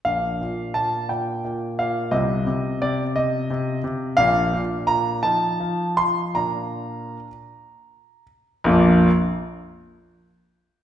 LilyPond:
<<
  \new Staff \with { instrumentName = "Grand piano" } { \time 6/8 \key bes \major \tempo 4. = 56 << { f''4 a''8 g''4 f''8 | ees''4 d''8 ees''4. | f''4 bes''8 a''4 c'''8 | bes''2~ bes''8 r8 |
<bes,, f, f bes d' f'>8 r2 r8 | } \\ { <d' f'>2. | <c' f'>2. | <d' f'>4. <ees' f'>4. | r2. |
r2. | } >> }
  \new Staff \with { instrumentName = "Grand piano" } { \clef bass \time 6/8 \key bes \major <bes,, bes,>8 bes,8 bes,8 bes,8 bes,8 bes,8 | <c, c>8 c8 c8 c8 c8 c8 | <bes,, bes,>8 bes,8 bes,8 f8 f8 f8 | <bes, d' f'>4. r4. |
r2. | }
>>